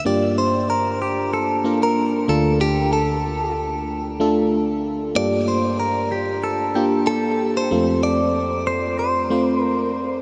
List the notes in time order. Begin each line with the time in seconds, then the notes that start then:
0.05 G2 A#3 D4 F4 G4 D5
0.38 C5
0.70 A#4
1.02 G4
1.34 A4
1.64 A#3 D4 F4 A#4
1.83 A#4
2.28 D2 D3 A3 D4 F4 A4
2.61 G4
2.93 A4
4.20 A3 D4 F4 A4
5.15 G2 A#3 D4 F4 G4 D5
5.48 C5
5.80 A#4
6.12 G4
6.44 A4
6.75 A#3 D4 F4 G4
7.07 A4
7.57 C5
7.71 F2 A3 C4 F4 A4
8.03 D5
8.67 C5
8.99 C5
9.30 A3 C4 F4 C5
9.64 A#4